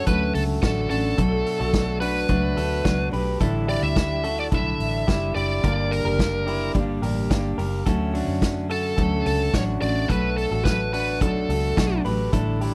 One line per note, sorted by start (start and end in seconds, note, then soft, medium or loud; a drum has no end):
0.07 0.31 D2 medium
0.07 0.61 D3 medium
0.07 0.62 F#3 medium
0.07 0.63 A3 medium
0.07 0.64 C#4 medium
0.07 0.60 F#4 medium
0.07 0.59 A4 medium
0.07 0.34 B4 medium
0.07 kick loud
0.07 closed hi-hat medium
0.34 0.59 C#2 medium
0.34 0.42 A4 medium
0.34 open hi-hat medium
0.62 0.86 A1 loud
0.62 0.90 D3 medium
0.62 0.91 F#3 medium
0.62 0.90 A3 medium
0.62 0.88 C#4 medium
0.62 0.90 D4 medium
0.62 0.89 F#4 medium
0.62 0.89 A4 medium
0.62 kick loud
0.62 snare loud
0.62 closed hi-hat medium
0.89 1.14 A1 medium
0.89 1.17 F#3 soft
0.89 1.18 A3 soft
0.89 1.18 C#4 medium
0.89 1.19 D4 medium
0.89 1.17 F#4 medium
0.89 1.98 A4 medium
0.89 open hi-hat medium
1.17 1.42 B1 loud
1.17 1.72 B2 medium
1.17 1.72 F#3 medium
1.17 1.74 A3 medium
1.17 1.75 D4 medium
1.17 1.58 F#4 medium
1.17 1.57 A4 medium
1.17 kick medium
1.17 closed hi-hat medium
1.46 open hi-hat medium
1.60 2.26 B1 medium
1.60 1.99 F#4 medium
1.60 1.99 A4 medium
1.73 2.01 B2 medium
1.73 2.02 F#3 medium
1.73 2.01 A3 medium
1.73 2.00 D4 medium
1.73 kick loud
1.73 snare medium
1.73 closed hi-hat medium
2.00 2.29 F#3 soft
2.00 2.29 A3 soft
2.00 2.29 D4 soft
2.00 2.29 D4 medium
2.00 2.28 F#4 medium
2.00 3.08 B4 medium
2.00 open hi-hat medium
2.29 2.53 C#2 medium
2.29 2.83 B2 medium
2.29 2.84 F#3 medium
2.29 2.86 A3 medium
2.29 2.58 D4 medium
2.29 2.87 D4 medium
2.29 2.57 F#4 medium
2.29 kick medium
2.29 closed hi-hat medium
2.57 2.81 D2 medium
2.57 2.83 F#4 soft
2.57 2.85 A4 medium
2.57 open hi-hat medium
2.84 3.09 C#2 medium
2.84 3.13 B2 medium
2.84 3.13 F#3 medium
2.84 3.12 A3 medium
2.84 3.13 D4 medium
2.84 3.10 D4 medium
2.84 3.13 F#4 medium
2.84 kick loud
2.84 snare loud
2.84 closed hi-hat medium
3.12 3.37 B1 medium
3.12 3.41 F#3 soft
3.12 3.41 A3 soft
3.12 3.40 D4 medium
3.12 3.41 G4 medium
3.12 3.40 B4 medium
3.12 open hi-hat medium
3.40 3.76 A1 loud
3.40 3.96 A2 medium
3.40 3.95 D3 medium
3.40 3.96 G3 medium
3.40 3.97 D4 medium
3.40 3.68 E4 medium
3.40 3.97 E4 medium
3.40 3.68 A4 medium
3.40 kick medium
3.40 closed hi-hat medium
3.68 4.21 E4 medium
3.68 4.21 G4 medium
3.68 3.83 D5 medium
3.68 open hi-hat medium
3.82 4.48 D2 medium
3.82 4.39 E5 loud
3.95 4.24 D3 medium
3.95 4.24 G3 medium
3.95 4.24 D4 medium
3.95 4.22 E4 medium
3.95 kick loud
3.95 snare medium
3.95 closed hi-hat medium
4.23 4.51 G3 soft
4.23 4.52 D4 soft
4.23 4.52 E4 soft
4.23 4.52 F#4 medium
4.23 4.51 A4 medium
4.23 open hi-hat medium
4.40 4.45 D5 medium
4.51 4.76 B1 medium
4.51 5.07 A2 medium
4.51 5.06 D3 medium
4.51 5.07 G3 medium
4.51 5.08 D4 medium
4.51 5.05 E4 medium
4.51 5.08 E4 medium
4.51 5.04 A4 medium
4.51 5.35 E5 medium
4.51 kick loud
4.51 closed hi-hat medium
4.80 5.04 A1 medium
4.80 open hi-hat medium
5.06 5.32 F#1 medium
5.06 5.35 D3 soft
5.06 5.35 G3 medium
5.06 5.35 D4 medium
5.06 5.35 E4 medium
5.06 5.33 E4 medium
5.06 5.34 G4 medium
5.06 kick loud
5.06 snare loud
5.06 closed hi-hat medium
5.35 5.59 F#1 medium
5.35 5.63 G3 soft
5.35 5.64 D4 soft
5.35 5.63 E4 soft
5.35 5.63 E4 medium
5.35 5.63 G4 medium
5.35 5.93 D5 medium
5.35 open hi-hat medium
5.63 5.99 G1 loud
5.63 6.19 G2 medium
5.63 6.17 D3 medium
5.63 6.18 G3 medium
5.63 6.19 A#3 medium
5.63 6.20 D4 medium
5.63 6.03 G4 medium
5.63 6.03 A#4 medium
5.63 kick loud
5.63 closed hi-hat medium
5.91 6.71 A#4 medium
5.91 open hi-hat medium
6.05 6.71 F#1 medium
6.05 6.45 G4 medium
6.05 6.44 A#4 medium
6.18 6.75 D3 soft
6.18 6.74 G3 medium
6.18 6.75 A#3 medium
6.18 6.76 D4 medium
6.18 kick loud
6.18 snare medium
6.18 closed hi-hat medium
6.47 6.75 E4 medium
6.47 6.74 G4 medium
6.47 open hi-hat medium
6.74 6.98 G1 medium
6.74 7.30 G2 medium
6.74 7.29 D3 medium
6.74 7.30 G3 medium
6.74 7.31 A#3 medium
6.74 7.03 D4 medium
6.74 7.32 D4 medium
6.74 7.02 G4 medium
6.74 kick loud
6.74 closed hi-hat medium
7.02 7.26 A1 medium
7.02 7.29 G4 soft
7.02 7.30 A#4 medium
7.02 open hi-hat medium
7.30 7.54 G1 medium
7.30 7.58 D3 medium
7.30 7.59 G3 medium
7.30 7.58 A#3 medium
7.30 7.59 D4 medium
7.30 7.57 D4 medium
7.30 7.57 G4 medium
7.30 kick loud
7.30 snare loud
7.30 closed hi-hat medium
7.58 7.82 F#1 medium
7.58 7.87 G3 soft
7.58 7.87 A#3 medium
7.58 7.86 D4 medium
7.58 7.86 G4 medium
7.58 7.85 A#4 medium
7.58 open hi-hat medium
7.86 8.22 D2 loud
7.86 8.41 D3 medium
7.86 8.42 F#3 medium
7.86 8.43 A3 medium
7.86 8.43 C#4 medium
7.86 8.12 F#4 medium
7.86 8.14 A4 medium
7.86 kick loud
7.86 closed hi-hat medium
8.14 8.67 D4 medium
8.14 8.66 F#4 medium
8.14 open hi-hat medium
8.27 8.94 F#2 medium
8.41 8.97 D3 medium
8.41 8.97 F#3 medium
8.41 8.98 A3 medium
8.41 8.98 C#4 medium
8.41 kick loud
8.41 snare medium
8.41 closed hi-hat medium
8.70 8.97 F#4 medium
8.70 8.96 A4 medium
8.70 9.26 A4 medium
8.70 open hi-hat medium
8.97 9.21 D2 medium
8.97 9.52 D3 medium
8.97 9.53 F#3 medium
8.97 9.54 A3 medium
8.97 9.54 C#4 medium
8.97 9.50 F#4 medium
8.97 9.50 A4 medium
8.97 kick medium
8.97 closed hi-hat medium
9.26 9.50 C#2 medium
9.26 9.55 A4 medium
9.26 open hi-hat medium
9.52 9.77 A1 medium
9.52 9.81 D3 medium
9.52 9.81 F#3 medium
9.52 9.81 A3 medium
9.52 9.79 C#4 medium
9.52 9.81 D4 medium
9.52 9.80 F#4 medium
9.52 9.62 C#5 medium
9.52 kick loud
9.52 snare loud
9.52 closed hi-hat medium
9.80 10.05 A1 medium
9.80 10.08 F#3 soft
9.80 10.09 A3 soft
9.80 10.09 C#4 medium
9.80 10.10 D4 medium
9.80 10.09 F#4 medium
9.80 10.10 D5 medium
9.80 open hi-hat medium
10.09 10.45 B1 loud
10.09 10.63 B2 medium
10.09 10.64 F#3 medium
10.09 10.66 A3 medium
10.09 10.67 D4 medium
10.09 10.49 F#4 medium
10.09 10.49 A4 medium
10.09 10.37 B4 medium
10.09 kick loud
10.09 closed hi-hat medium
10.37 10.64 A4 medium
10.37 open hi-hat medium
10.51 11.21 A1 medium
10.51 10.91 F#4 medium
10.51 10.91 A4 medium
10.64 11.19 B2 soft
10.64 11.20 F#3 medium
10.64 11.21 A3 medium
10.64 11.22 D4 medium
10.64 10.92 B4 medium
10.64 kick loud
10.64 snare medium
10.64 closed hi-hat medium
10.93 11.21 D4 medium
10.93 11.20 F#4 medium
10.93 11.19 B4 medium
10.93 open hi-hat medium
11.20 11.45 B1 medium
11.20 11.75 B2 medium
11.20 11.76 F#3 medium
11.20 11.78 A3 medium
11.20 11.49 D4 medium
11.20 11.79 D4 medium
11.20 11.49 F#4 medium
11.20 12.01 A4 medium
11.20 kick loud
11.20 closed hi-hat medium
11.49 11.72 C#2 medium
11.49 11.76 F#4 medium
11.49 11.77 A4 medium
11.49 open hi-hat medium
11.76 12.01 B1 medium
11.76 12.04 B2 medium
11.76 12.05 F#3 medium
11.76 12.05 A3 medium
11.76 12.05 D4 medium
11.76 12.03 D4 medium
11.76 12.05 F#4 medium
11.76 kick loud
11.76 snare loud
11.76 closed hi-hat medium
12.05 12.28 A1 medium
12.05 12.33 F#3 soft
12.05 12.33 A3 soft
12.05 12.33 D4 medium
12.05 12.33 G4 medium
12.05 12.32 B4 medium
12.05 open hi-hat medium
12.32 12.68 A1 medium
12.32 12.74 A2 medium
12.32 12.74 D3 medium
12.32 12.74 G3 medium
12.32 12.74 D4 medium
12.32 12.61 E4 medium
12.32 12.74 E4 medium
12.32 12.61 A4 loud
12.32 kick loud
12.32 closed hi-hat medium
12.61 12.74 E4 medium
12.61 12.74 G4 medium
12.61 open hi-hat medium